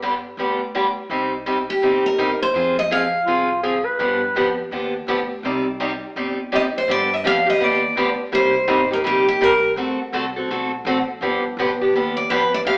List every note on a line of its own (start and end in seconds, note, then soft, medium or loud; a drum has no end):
0.00 0.23 G1 medium
0.00 0.13 D3 medium
0.00 0.13 G3 medium
0.00 0.14 B3 medium
0.00 0.14 D4 medium
0.00 0.14 G4 medium
0.37 0.95 D2 medium
0.37 0.59 D3 medium
0.37 0.60 G3 medium
0.37 0.60 B3 medium
0.37 0.60 D4 medium
0.37 0.60 G4 medium
0.75 0.85 D3 medium
0.75 0.85 G3 medium
0.75 0.85 B3 medium
0.75 0.86 D4 medium
0.75 0.86 G4 medium
1.10 1.67 C2 medium
1.10 1.31 C3 medium
1.10 1.31 G3 medium
1.10 1.31 C4 medium
1.10 1.31 D#4 medium
1.10 1.32 G4 medium
1.46 1.57 C3 medium
1.46 1.57 G3 medium
1.46 1.57 C4 medium
1.46 1.57 D#4 medium
1.46 1.58 G4 medium
1.70 2.03 G4 medium
1.82 2.40 G1 medium
1.82 2.04 C3 medium
1.82 2.04 G3 medium
1.82 2.04 C4 medium
1.82 2.04 D#4 medium
1.82 2.04 G4 medium
2.06 2.39 A#4 medium
2.18 2.29 C3 medium
2.18 2.30 G3 medium
2.18 2.30 C4 medium
2.18 2.30 D#4 medium
2.18 2.30 G4 medium
2.42 2.78 C5 medium
2.54 3.12 F2 medium
2.54 2.76 F3 medium
2.54 2.76 C4 medium
2.54 2.76 F4 medium
2.54 2.76 G#4 medium
2.79 2.92 D#5 medium
2.91 3.02 F3 medium
2.91 3.02 C4 medium
2.91 3.02 F4 medium
2.91 3.02 G#4 medium
2.91 3.82 F5 medium
3.25 3.84 C2 medium
3.25 3.48 F3 medium
3.25 3.48 C4 medium
3.25 3.59 F4 medium
3.25 3.49 F4 medium
3.25 3.48 G#4 medium
3.63 3.74 F3 medium
3.63 3.74 C4 medium
3.63 3.74 F4 medium
3.63 3.86 G#4 medium
3.63 3.75 G#4 medium
3.85 4.57 B4 medium
3.99 4.28 G2 medium
3.99 4.20 D3 medium
3.99 4.20 F3 medium
3.99 4.21 B3 medium
3.99 4.21 D4 medium
3.99 4.21 G4 medium
4.35 4.65 F2 medium
4.35 4.47 D3 medium
4.35 4.47 F3 medium
4.35 4.47 B3 medium
4.35 4.47 D4 medium
4.35 4.47 G4 loud
4.71 5.02 D#2 medium
4.71 4.93 D3 medium
4.71 4.93 F3 medium
4.71 4.93 B3 medium
4.71 4.93 D4 medium
4.71 4.93 G4 medium
5.07 5.38 D2 medium
5.07 5.19 D3 medium
5.07 5.19 F3 medium
5.07 5.19 B3 medium
5.07 5.19 D4 loud
5.07 5.19 G4 loud
5.43 6.01 C2 medium
5.43 5.65 C3 medium
5.43 5.65 G3 medium
5.43 5.65 C4 medium
5.43 5.66 D#4 medium
5.43 5.65 G4 medium
5.43 5.66 D5 medium
5.80 5.91 C3 medium
5.80 5.91 G3 medium
5.80 5.91 C4 medium
5.80 5.91 D#4 medium
5.80 5.91 G4 medium
5.80 5.91 D5 medium
6.16 6.74 G1 medium
6.16 6.37 C3 medium
6.16 6.37 G3 medium
6.16 6.37 C4 medium
6.16 6.37 D#4 medium
6.16 6.37 G4 medium
6.16 6.38 D5 medium
6.52 6.63 C3 medium
6.52 6.63 G3 medium
6.52 6.63 C4 medium
6.52 6.63 D#4 medium
6.52 6.64 G4 medium
6.52 6.63 D5 medium
6.52 6.61 D#5 medium
6.78 6.90 C5 medium
6.88 7.23 G2 loud
6.88 7.10 D3 medium
6.88 7.10 F3 medium
6.88 7.10 B3 medium
6.88 7.10 D4 medium
6.88 7.10 G4 medium
6.88 7.14 D5 loud
7.14 7.26 D#5 medium
7.24 7.59 F2 medium
7.24 7.35 D3 medium
7.24 7.36 F3 medium
7.24 7.36 B3 medium
7.24 7.36 D4 medium
7.24 7.36 G4 medium
7.24 7.47 F5 loud
7.46 7.59 B3 soft
7.46 7.59 D4 medium
7.46 7.59 G4 medium
7.46 7.64 D#5 medium
7.60 7.95 D#2 medium
7.60 7.81 D3 medium
7.60 7.81 F3 medium
7.60 7.82 B3 medium
7.60 7.82 D4 medium
7.60 7.82 G4 medium
7.64 8.21 D5 medium
7.95 8.17 D2 medium
7.95 8.08 D3 medium
7.95 8.08 F3 medium
7.95 8.08 B3 loud
7.95 8.08 D4 medium
7.95 8.08 G4 medium
8.19 muted upright bass stroke soft
8.32 8.67 C2 medium
8.32 8.53 C3 medium
8.32 8.54 G3 medium
8.32 8.54 A#3 medium
8.32 8.54 D#4 medium
8.32 8.54 G4 medium
8.32 8.88 C5 medium
8.68 9.03 G#1 medium
8.68 8.79 C3 medium
8.68 8.79 G3 medium
8.68 8.79 A#3 medium
8.68 8.79 D#4 medium
8.68 8.80 G4 medium
8.91 9.03 A#3 soft
8.91 9.03 D#4 medium
8.91 9.03 G4 medium
8.91 8.98 A#4 medium
9.04 9.40 A#1 medium
9.04 9.25 C3 medium
9.04 9.25 G3 medium
9.04 9.26 A#3 medium
9.04 9.26 D#4 medium
9.04 9.26 G4 medium
9.04 9.27 G4 medium
9.29 9.43 G4 medium
9.40 9.75 C2 medium
9.40 9.52 C3 medium
9.40 9.52 G3 loud
9.40 9.52 A#3 medium
9.40 9.52 D#4 medium
9.40 9.53 G4 loud
9.40 9.71 A#4 medium
9.76 9.97 D2 medium
9.76 9.98 D3 medium
9.76 9.98 A3 medium
9.76 9.98 C4 medium
9.76 9.98 F#4 medium
9.76 9.99 A4 medium
9.99 muted upright bass stroke soft
10.12 10.48 C2 medium
10.12 10.24 D3 medium
10.12 10.24 A3 medium
10.12 10.25 C4 medium
10.12 10.25 F#4 medium
10.12 10.25 A4 medium
10.36 10.50 C4 soft
10.36 10.49 F#4 soft
10.36 10.49 A4 medium
10.48 10.84 B1 medium
10.48 10.71 D3 medium
10.48 10.71 A3 medium
10.48 10.71 C4 medium
10.48 10.71 F#4 medium
10.48 10.71 A4 medium
10.85 11.06 A1 loud
10.85 10.97 D3 medium
10.85 10.97 A3 loud
10.85 10.97 C4 medium
10.85 10.97 F#4 loud
10.85 10.97 A4 medium
11.21 11.56 G1 medium
11.21 11.43 D3 medium
11.21 11.43 F3 medium
11.21 11.43 B3 medium
11.21 11.43 D4 medium
11.21 11.43 G4 medium
11.57 11.92 B1 medium
11.57 11.69 D3 medium
11.57 11.70 F3 loud
11.57 11.70 B3 medium
11.57 11.70 D4 medium
11.57 11.70 G4 medium
11.81 11.94 B3 soft
11.81 11.94 D4 soft
11.81 11.94 G4 medium
11.93 12.28 D#2 medium
11.93 12.16 D3 medium
11.93 12.16 F3 medium
11.93 12.16 B3 medium
11.93 12.16 D4 medium
11.93 12.16 G4 medium
12.17 12.29 D5 medium
12.30 12.64 F2 medium
12.30 12.41 D3 medium
12.30 12.42 F3 medium
12.30 12.42 B3 medium
12.30 12.42 D4 medium
12.30 12.42 G4 medium
12.30 12.51 B4 medium
12.54 12.59 D5 medium
12.65 12.78 D2 loud
12.65 12.78 D3 medium
12.65 12.78 F3 medium
12.65 12.78 B3 medium
12.65 12.78 D4 medium
12.65 12.78 G4 medium
12.65 12.78 F5 medium